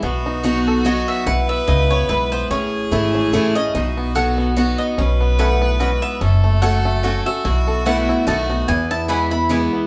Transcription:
0.03 B1 B2 B3 F#4
0.26 D#4
0.43 F#3 B3 D#4 F#4
0.67 A4
0.85 F#3 B3 D#4 F#4 D#5
1.08 B3 E5
1.26 B1 B2 E4 B4 F#5
1.49 B3 E5
1.68 C#2 C#3 E4 D#5
1.90 B3 C#5
2.09 B1 G#2 E4 B4
2.32 B3 C5
2.50 A1 A2 C#4 G#4 C#5
2.91 G#1 E3 A3 C#4 E4
3.15 C#4
3.33 A1 E3 A3 C#4 E4
3.55 C#4 E4 D#5
3.74 B1 B2 D#4 F#4
3.97 B3
4.15 F#3 B3 D#4 F#4 A4 F#5
4.38 B3
4.56 F#3 B3 D#4 F#4
4.78 B3 D#5
4.98 B1 B2 C#4 B4
5.21 B3
5.38 A2 C#4 F#4 A4 D#5 F#5 B5
5.62 B3
5.79 G#2 C#4 F#4 D#5 B5
6.02 B3 E5
6.21 F#1 F#2 C#4 A4
6.44 A3
6.62 F#3 A3 C#4 F#4 A4 C#5 F#5
6.85 A3
7.03 F#3 A3 C#4 F#4 C#5 F#5
7.26 A3 C#4 F#4 E5
7.45 B1 B2 E4 F#4
7.67 A4
7.85 E3 A3 B3 E4 B4 F#5
8.09 E4
8.27 B1 D#3 A3 B3 F#4 D#5 A5
8.49 B3 D#4 F#4
8.68 E2 B3 E4 G#5
8.91 E4 A5
9.08 E3 G#3 B3 E4 B4 G#5 B5
9.31 B3 E4 B5
9.49 E3 G#3 B3 E4 B4 G#5
9.73 B3

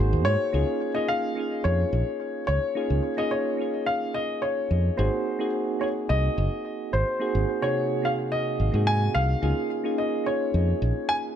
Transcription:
Already playing: A#3 D#4 F#4 G#4 C5
0.00 G#1
0.13 D#2
0.25 G#2 C#5
0.52 C#2 A#3 C#4 D#4 F4 G#4
0.94 A#3 C#4 D#4 F4 G#4 D#5
1.08 F5
1.35 A#3 C#4 D#4 F4
1.40 G#4
1.64 F2 C#5
1.93 A#1
2.47 C#2 C#5
2.75 A#3 C#4 D#4 F4 G#4
2.90 C#2
3.17 A#3 C#4 D#4 F4 G#4 D#5
3.31 C#5
3.57 A#3 C#4 D#4 F4
3.62 G#4
3.86 F5
4.14 D#5
4.42 C#5
4.71 F2
4.97 G#1 A#3 C4 D#4 F#4 G#4 C5
5.39 A#3 C4 D#4 F#4 G#4
5.80 A#3 C4 D#4 F#4 C#5
5.84 G#4
6.09 C2 D#5
6.38 F#1
6.93 G#1 C5
7.20 A#3 C4 D#4 F#4 G#4
7.35 G#1
7.62 C3 A#3 D#4 F#4 G#4 C#5
8.02 A#3 C4 D#4 F#4 F5
8.06 G#4
8.32 D#5
8.60 G#1
8.72 G#2 A#3 C4 D#4 F#4
8.76 G#4
8.87 G#5
9.15 C2 F5
9.42 C#2 A#3 C#4 D#4 F4 G#4
9.84 A#3 C#4 D#4 F4 G#4
9.98 D#5
10.24 A#3 C#4 D#4 F4 C#5
10.28 G#4
10.54 F2
10.82 A#1
11.09 G#5

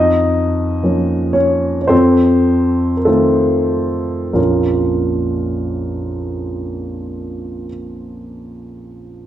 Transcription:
Already playing: F2 D#4 D#5
0.83 F3 A#3 C#4
1.33 C#4 C#5
1.82 C#5
1.88 F2 C4 A4 C5
2.97 A#4
3.05 D#3 A3 C4 F4 A4
4.33 A#1 F2 F3 A#3 C#4 F4 A#4

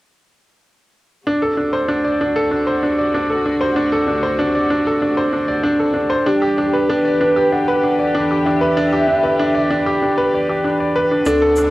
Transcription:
1.26 D2 C3 D4 F#4
1.42 A4
1.57 D4
1.73 C5
1.88 D4
2.04 D5
2.21 D4
2.36 A4
2.51 D4
2.67 C5
2.83 D4
2.98 D5
3.14 D4
3.30 A4
3.46 D4
3.61 C5
3.76 D4
3.92 A4
4.08 D4
4.23 C5
4.39 D4
4.55 D5
4.70 D4
4.87 A4
5.02 D4
5.17 C5
5.33 D4
5.48 D5
5.63 D4
5.79 A4
5.94 D4
6.10 C5
6.26 E2 D3 D4 G4
6.42 G4
6.58 D4
6.73 B4
6.89 D4 B4
7.05 D5
7.21 D4
7.36 G4
7.52 D4 F#5
7.68 B4
7.83 D4
7.99 D5
8.15 D4
8.31 G4
8.45 D4 E5
8.61 B4
8.77 D4
8.92 G4
9.08 D4
9.23 B4
9.39 D4
9.55 D5
9.71 D4
9.86 G4
10.02 D4
10.18 B4
10.34 D5
10.49 G4
10.64 D4
10.80 D5
10.96 B4
11.11 D4
11.25 D2 D3 C4 D4 F#4 A4, riser, shaker
11.42 A4
11.56 D4, shaker

